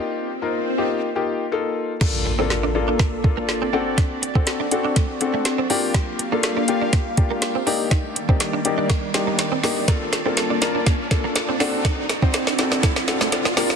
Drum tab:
CC |----------------|x---------------|----------------|----------------|
HH |----------------|----------------|x-x-x-x-x-x-x-o-|x-x-x-x-x-x-x-o-|
SD |----------------|o---o---o---o---|o---o---o---o---|o---o---o---o---|
BD |----------------|o-------o-o-----|o--o----o-------|o-------o-o-----|

CC |----------------|----------------|----------------|
HH |x-x-x-x-x-x-x-o-|x-x-x-x-x-x-x-o-|x-x-x-x-x-x-x-o-|
SD |o---o---o-o-o-o-|o-o-o-o-o-o-o-o-|o-o-oooooooooooo|
BD |o--o----o-------|o-------o-o-----|o--o----o-------|